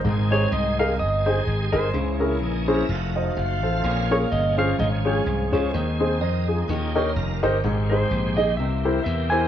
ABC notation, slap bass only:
X:1
M:4/4
L:1/8
Q:"Swing" 1/4=127
K:Ab
V:1 name="Slap bass" clef=bass
A,,,2 C,,2 G,,,2 A,,, G,,, | D,,2 B,,,2 F,,,2 _G,,, =A,,, | B,,,2 G,,,2 A,,,2 C,, D,, | E,,2 F,,2 E,,2 F,,, G,,, |
A,,,2 B,,,2 C,,2 =E,,2 |]